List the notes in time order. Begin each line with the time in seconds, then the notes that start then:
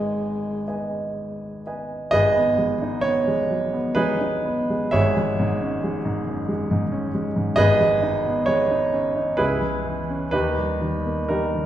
Already playing: G#1 G#3 B4 D#5 G#5
0.67 B4 D#5 G#5
1.66 B4 D#5 G#5
2.11 G#1 G#4 B4 D#5
2.36 B3
2.58 G#3
2.81 D#4
3.01 B3 C#5
3.27 G#3
3.50 F#3
3.74 B3
3.95 G#3 D#4 G#4 B4
4.21 D#4
4.45 B3
4.70 G#3
4.91 G#1 G#4 C#5 E5
5.16 G#3
5.39 G#2
5.61 C#4
5.84 G#3
6.05 G#2
6.27 F#2
6.49 G#3
6.71 G#2
6.92 C#4
7.14 G#3
7.36 G#2
7.56 G#1 G#4 B4 D#5
7.80 G#3
8.02 D#4
8.25 B3
8.46 G#3 C#5
8.71 D#4
8.93 C#4
9.16 D#4
9.37 C#2 E4 G#4 B4
9.62 G#3
9.85 E3
10.10 C#4
10.31 D#2 D#4 G4 B4
10.58 G3
10.81 D#3
11.06 A#3
11.29 G3 D#4 G4 A#4
11.54 D#3